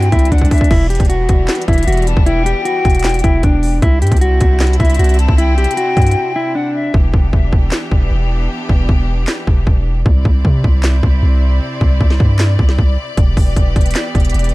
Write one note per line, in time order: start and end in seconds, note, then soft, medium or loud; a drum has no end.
0.00 0.11 G2 loud
0.00 0.68 C3 medium
0.00 0.68 C4 medium
0.00 3.78 D4 medium
0.00 0.68 E4 medium
0.00 0.28 G5 loud
0.00 closed hi-hat medium
0.12 0.31 C2 loud
0.12 0.30 E4 medium
0.12 kick medium
0.12 closed hi-hat medium
0.19 closed hi-hat medium
0.25 closed hi-hat medium
0.32 0.50 C2 loud
0.32 0.68 D4 medium
0.32 0.50 F#5 medium
0.32 kick medium
0.32 closed hi-hat medium
0.38 kick medium
0.38 closed hi-hat medium
0.45 closed hi-hat medium
0.51 0.70 E5 medium
0.51 kick loud
0.51 closed hi-hat medium
0.51 open hi-hat medium
0.58 kick loud
0.58 closed hi-hat medium
0.64 closed hi-hat medium
0.71 0.99 E1 loud
0.71 3.79 E3 medium
0.71 3.79 G3 medium
0.71 3.79 B3 medium
0.71 0.89 E4 loud
0.71 kick loud
0.71 crash medium
0.90 1.08 G4 medium
0.90 closed hi-hat medium
0.95 closed hi-hat medium
1.00 1.28 E1 loud
1.00 kick medium
1.00 closed hi-hat medium
1.05 closed hi-hat medium
1.09 1.64 F#4 medium
1.09 closed hi-hat medium
1.29 1.48 E1 loud
1.29 kick loud
1.29 closed hi-hat medium
1.48 snare loud
1.48 clap medium
1.48 closed hi-hat soft
1.55 closed hi-hat medium
1.62 closed hi-hat medium
1.68 1.87 E1 loud
1.68 1.86 E4 medium
1.68 2.05 E5 medium
1.68 kick loud
1.68 closed hi-hat soft
1.73 closed hi-hat medium
1.78 closed hi-hat medium
1.83 closed hi-hat medium
1.87 2.16 E1 loud
1.87 2.05 F#4 medium
1.87 closed hi-hat medium
1.92 closed hi-hat medium
1.97 closed hi-hat medium
2.02 closed hi-hat soft
2.07 2.26 A5 medium
2.07 closed hi-hat medium
2.17 2.54 E1 loud
2.17 kick loud
2.26 2.44 E4 loud
2.26 3.78 G5 loud
2.26 closed hi-hat medium
2.46 2.64 G4 medium
2.46 closed hi-hat medium
2.65 3.20 F#4 medium
2.65 closed hi-hat medium
2.85 3.22 E1 loud
2.85 kick loud
2.85 closed hi-hat soft
2.90 closed hi-hat medium
2.95 closed hi-hat medium
2.99 closed hi-hat medium
3.04 snare loud
3.04 clap loud
3.04 closed hi-hat medium
3.09 closed hi-hat medium
3.14 closed hi-hat medium
3.19 closed hi-hat medium
3.24 3.43 E1 loud
3.24 3.42 E4 medium
3.24 kick medium
3.24 closed hi-hat medium
3.43 3.81 E1 loud
3.43 3.80 D4 medium
3.43 kick medium
3.43 closed hi-hat medium
3.63 open hi-hat medium
3.82 4.03 C2 loud
3.82 6.91 C3 medium
3.82 6.91 C4 medium
3.82 6.91 D4 medium
3.82 6.91 E4 medium
3.82 4.00 E4 loud
3.82 kick loud
3.82 closed hi-hat medium
4.02 4.11 G2 loud
4.02 4.20 G4 medium
4.02 closed hi-hat medium
4.07 closed hi-hat medium
4.12 4.40 C2 loud
4.12 kick medium
4.12 closed hi-hat medium
4.17 closed hi-hat medium
4.21 4.76 F#4 medium
4.21 closed hi-hat medium
4.41 4.78 C2 loud
4.41 kick loud
4.41 closed hi-hat medium
4.60 snare loud
4.60 clap loud
4.60 closed hi-hat soft
4.67 closed hi-hat medium
4.73 closed hi-hat medium
4.80 4.99 C2 loud
4.80 4.98 E4 medium
4.80 5.16 E5 medium
4.80 kick loud
4.80 closed hi-hat soft
4.85 closed hi-hat medium
4.90 closed hi-hat medium
4.94 closed hi-hat medium
4.99 5.27 C2 loud
4.99 5.17 F#4 medium
4.99 closed hi-hat medium
5.04 closed hi-hat medium
5.09 closed hi-hat medium
5.14 closed hi-hat soft
5.19 5.37 A5 medium
5.19 closed hi-hat medium
5.29 5.59 C2 loud
5.29 kick loud
5.38 5.56 E4 loud
5.38 6.51 G5 loud
5.38 closed hi-hat medium
5.58 5.67 B1 loud
5.58 5.76 G4 loud
5.58 closed hi-hat soft
5.64 closed hi-hat medium
5.71 closed hi-hat medium
5.77 6.32 F#4 medium
5.77 closed hi-hat medium
5.97 6.15 G2 loud
5.97 kick medium
5.97 closed hi-hat soft
6.02 closed hi-hat medium
6.07 closed hi-hat medium
6.11 closed hi-hat medium
6.36 6.54 E4 medium
6.55 6.92 D4 medium
6.55 6.74 F#5 medium
6.75 6.93 E5 medium
6.94 7.13 E1 loud
6.94 10.03 E3 medium
6.94 10.03 B3 medium
6.94 10.03 D4 medium
6.94 10.03 G4 medium
6.94 kick loud
7.14 7.32 E1 loud
7.14 kick loud
7.33 7.52 E1 loud
7.33 kick medium
7.53 7.71 E1 loud
7.53 kick medium
7.71 snare loud
7.71 clap medium
7.92 8.10 E1 loud
7.92 kick medium
8.11 8.48 E1 loud
8.69 8.88 E1 loud
8.69 kick loud
8.89 9.26 E1 loud
8.89 kick medium
9.27 snare loud
9.27 clap medium
9.47 9.66 E1 loud
9.47 kick medium
9.67 10.04 E1 loud
9.67 kick medium
10.06 10.24 C2 loud
10.06 13.14 C3 medium
10.06 13.14 C4 medium
10.06 13.14 E4 medium
10.06 14.54 D5 medium
10.06 kick loud
10.25 10.44 C2 loud
10.25 kick medium
10.45 10.63 C3 loud
10.45 kick medium
10.64 11.02 C2 loud
10.64 kick medium
10.83 snare loud
10.83 clap medium
11.03 11.22 C2 loud
11.03 kick medium
11.23 11.60 C2 loud
11.81 12.00 C2 loud
11.81 kick loud
12.01 12.19 C2 loud
12.01 kick medium
12.10 snare medium
12.20 12.57 G2 loud
12.20 kick medium
12.39 snare loud
12.39 clap medium
12.59 12.78 C2 loud
12.59 kick loud
12.69 snare medium
12.79 12.97 C2 loud
12.79 kick medium
13.17 13.36 E1 loud
13.17 14.54 E3 medium
13.17 14.54 B3 medium
13.17 14.54 G4 medium
13.17 kick loud
13.17 closed hi-hat medium
13.37 13.56 E1 loud
13.37 kick loud
13.37 open hi-hat medium
13.56 13.75 E1 loud
13.56 kick medium
13.56 closed hi-hat medium
13.76 13.95 E1 loud
13.76 kick loud
13.76 closed hi-hat soft
13.81 closed hi-hat medium
13.86 closed hi-hat medium
13.91 closed hi-hat medium
13.95 snare loud
13.95 clap medium
13.95 closed hi-hat medium
14.15 14.34 E1 loud
14.15 kick loud
14.15 closed hi-hat medium
14.20 closed hi-hat medium
14.25 closed hi-hat medium
14.30 closed hi-hat medium
14.34 14.54 E1 loud
14.34 closed hi-hat medium
14.39 closed hi-hat medium
14.44 closed hi-hat medium
14.49 closed hi-hat soft